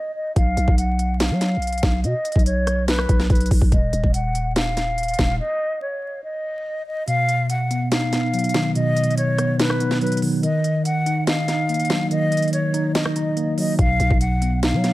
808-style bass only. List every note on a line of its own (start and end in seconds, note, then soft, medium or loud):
0.36 0.56 B1 loud
0.57 0.67 B1 loud
0.68 1.32 B1 loud
1.31 1.58 F#3 loud
1.57 1.82 B1 loud
1.83 2.06 B1 loud
2.04 2.14 B2 loud
2.36 3.06 B1 loud
3.09 3.29 B1 loud
3.30 3.50 B1 loud
3.51 3.61 B1 loud
3.62 3.72 B1 loud
3.72 3.92 D#1 loud
3.93 4.03 D#1 loud
4.04 5.15 D#1 loud
5.19 5.40 D#1 loud
13.79 13.99 B1 loud
14.00 14.10 B1 loud
14.10 14.75 B1 loud
14.73 14.93 F#3 loud